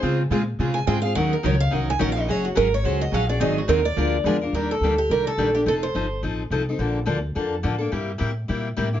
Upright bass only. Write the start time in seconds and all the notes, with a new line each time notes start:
0.02 C#3
0.30 A#2
0.59 C3
0.87 G#2
1.16 D#2
1.44 C#2
1.73 C2
2.01 A#1
2.29 F#1
2.57 G#1
2.83 C#2
3.12 A#1
3.40 G#1
3.68 D#2
3.97 D2
4.24 E2
4.52 D#2
4.80 D2
5.09 C2
5.37 A#1
5.66 F1
5.95 G1
6.22 A1
6.50 C2
6.78 A#1
7.07 D2
7.35 F2
7.64 A2
7.92 G2
8.21 A2
8.49 A#2
8.77 A2